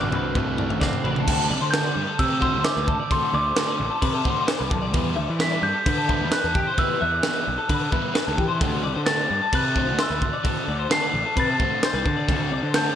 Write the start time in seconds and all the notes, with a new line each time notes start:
Already playing: D2 D3 A3 C4 F#4 F#6
0.00 A1 D5, floor tom
0.11 C2 B4, floor tom
0.34 A2 D3 A3 C4 F#4 A4, kick, floor tom
0.47 B4
0.58 A3 C4 F#4 D5, floor tom
0.69 A1 E5, floor tom
0.81 D3 A3 C4 F#4 D5, kick, snare, mid tom
0.93 floor tom
1.04 A1 D3 A3 C4 F#4 B4, mid tom
1.16 A4, mid tom
1.27 D2 D3 A3 C4 F#4 A4, kick, crash
1.50 C2 D5, muted overdriven electric guitar stroke
1.61 D3 C5
1.71 D3 A3 C4 A4 G6, snare, crash
1.75 F#4
1.84 D5
1.96 G2, muted overdriven electric guitar stroke
2.07 A4
2.18 C3 B4 E6, muted overdriven electric guitar stroke, kick, crash
2.30 A4
2.41 D3 A3 C4 F#4 C5 E6, kick
2.54 D2
2.65 C5 D6, muted overdriven electric guitar stroke, snare, crash
2.76 D2 B4
2.88 A4, muted overdriven electric guitar stroke, kick
3.00 D5
3.11 D3 A3 C4 F#4 A4 C6, kick, crash
3.33 D2 D5 D6, muted overdriven electric guitar stroke
3.46 C5
3.56 D3 A3 C4 F#4 A4, snare, crash
3.68 D5
3.79 A1, muted overdriven electric guitar stroke
3.90 A4
4.02 C3 B4, muted overdriven electric guitar stroke, kick, crash
4.13 A4
4.24 D3 A3 C4 F#4 C5, kick
4.47 C5, muted overdriven electric guitar stroke, snare, crash
4.59 C2 B4
4.70 B1 A4, muted overdriven electric guitar stroke, kick
4.82 D5
4.93 E2 E3 G3 B3 E4 B4, kick, crash
5.16 D2 E5, muted overdriven electric guitar stroke
5.28 E3 D5
5.39 E3 G3 B3 E4 B4 B6, snare, crash
5.51 D5
5.63 G2 G6, muted overdriven electric guitar stroke
5.74 A4
5.86 D3 B4, muted overdriven electric guitar stroke, kick, crash
5.97 A4
6.09 E3 G3 B3 E4 B4, kick
6.21 E2
6.31 B4 F#6, muted overdriven electric guitar stroke, snare, crash
6.44 E2 A4
6.54 G4, muted overdriven electric guitar stroke, kick
6.67 C5
6.74 E3 F#6, crash
6.78 G3 B3 E4 B4 E6, kick
7.01 E2 E5 F#6, muted overdriven electric guitar stroke
7.12 D5
7.23 E3 G3 B3 E4 B4, snare, crash
7.35 D5
7.47 B1, muted overdriven electric guitar stroke
7.58 A4
7.69 D3 B4, muted overdriven electric guitar stroke, kick, crash
7.81 A4
7.92 E3 G3 B3 E4 B4, kick
8.14 B4, muted overdriven electric guitar stroke, snare, crash
8.26 D2 A4
8.37 E3 G4, muted overdriven electric guitar stroke, kick
8.48 C5
8.60 D2 D3 A3 C4 F#4 A4, kick, crash
8.83 C2 D5, muted overdriven electric guitar stroke
8.94 D3 C5
9.06 D3 A3 C4 F#4 A4 A6, snare, crash
9.18 D5
9.30 G2, muted overdriven electric guitar stroke
9.41 A4
9.53 C3 B4 F#6, muted overdriven electric guitar stroke, kick, crash
9.64 A4
9.76 D3 A3 C4 F#4 C5, kick
9.88 D2
9.98 C5, muted overdriven electric guitar stroke, snare, crash
10.03 E6
10.09 D2 B4
10.22 A4, muted overdriven electric guitar stroke, kick
10.33 D5
10.44 D3 A3 C4 F#4 A4, kick, crash
10.68 D2 D5, muted overdriven electric guitar stroke
10.79 C5
10.90 D3 A3 C4 F#4 A4 C7, snare, crash
11.02 D5
11.13 A1, muted overdriven electric guitar stroke
11.25 A4
11.36 C3 B4 A6, muted overdriven electric guitar stroke, kick, crash
11.49 A4
11.60 D3 A3 C4 F#4 C5, kick
11.83 C5 G6, muted overdriven electric guitar stroke, snare, crash
11.94 C2 B4
12.05 D3 A4, muted overdriven electric guitar stroke, kick
12.17 D5
12.28 D2 D3 A3 C4 F#4 A4, kick, crash
12.51 C2 D5, muted overdriven electric guitar stroke
12.63 D3 C5
12.74 D3 A3 C4 F#4 A4 G6, snare, crash
12.86 D5